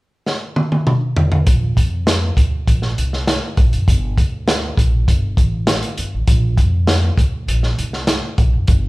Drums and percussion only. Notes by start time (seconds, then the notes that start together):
0.26 snare
0.56 high tom
0.72 high tom
0.87 mid tom
1.17 floor tom
1.32 floor tom
1.47 kick, closed hi-hat
1.77 kick, closed hi-hat
2.07 snare, closed hi-hat
2.37 kick, closed hi-hat
2.68 kick, closed hi-hat
2.82 snare
2.98 closed hi-hat
3.13 snare
3.27 snare, closed hi-hat
3.57 kick, closed hi-hat
3.73 closed hi-hat
3.88 kick, closed hi-hat
4.18 kick, closed hi-hat
4.48 snare, closed hi-hat
4.77 kick, closed hi-hat
5.08 kick, closed hi-hat
5.37 kick, closed hi-hat
5.67 snare, closed hi-hat
5.83 closed hi-hat
5.97 closed hi-hat
6.28 kick, closed hi-hat
6.58 kick, closed hi-hat
6.87 snare, closed hi-hat
7.17 kick, closed hi-hat
7.48 closed hi-hat
7.63 snare
7.79 closed hi-hat
7.93 snare
8.07 snare, closed hi-hat
8.38 kick, closed hi-hat
8.67 kick, closed hi-hat